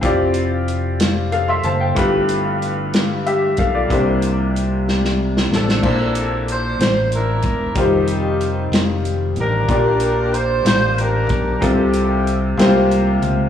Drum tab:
CC |------------|------------|------------|x-----------|
HH |x-x-x-x-x-x-|x-x-x-x-x-x-|x-x-x-------|--x-x-x-x-x-|
SD |------o-----|------o-----|------oo-ooo|------o-----|
BD |o-----------|o---------o-|o-----------|o---------o-|

CC |------------|------------|------------|
HH |x-x-x-x-x-x-|x-x-x-x-x-x-|x-x-x-x-x-x-|
SD |------o-----|------o-----|------o-----|
BD |o-----------|o---------o-|o-----------|